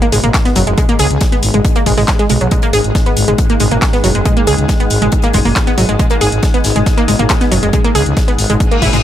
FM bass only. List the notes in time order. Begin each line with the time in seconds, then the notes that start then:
0.12 G#1
0.24 G#1
0.56 F#1
0.67 F#1
0.99 C#2
1.11 C#2
1.43 G#1
1.54 G#1
1.86 G#1
1.98 G#1
2.30 B1
2.41 B1
2.73 G#1
2.84 G#1
3.17 G#1
3.28 G#1
3.60 G#1
3.71 G#1
4.04 F#1
4.15 F#1
4.47 C#2
4.58 C#2
4.91 G#1
5.02 G#1
5.34 F#1
5.45 F#1
5.78 G#1
5.89 G#1
6.21 G#1
6.32 G#1
6.65 G#1
6.76 G#1
7.08 G#1
7.19 G#1
7.52 F#1
7.63 F#1
7.95 C#2
8.06 C#2
8.38 G#1
8.50 G#1
8.82 G#1
8.93 G#1